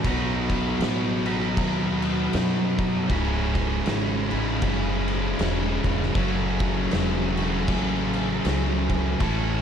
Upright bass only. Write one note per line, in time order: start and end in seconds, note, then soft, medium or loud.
0.05 0.77 B1 medium
0.79 1.53 A1 medium
1.57 2.30 D#2 loud
2.33 3.06 F#2 medium
3.10 3.83 C#1 medium
3.86 4.29 G#1 medium
4.32 4.61 A1 medium
4.62 5.35 F#1 loud
5.39 5.82 E1 loud
5.84 6.14 E1 medium
6.15 6.88 F#1 medium
6.92 7.65 E1 medium
7.68 8.41 A1 loud
8.45 9.17 C#2 medium
9.20 9.62 A1 medium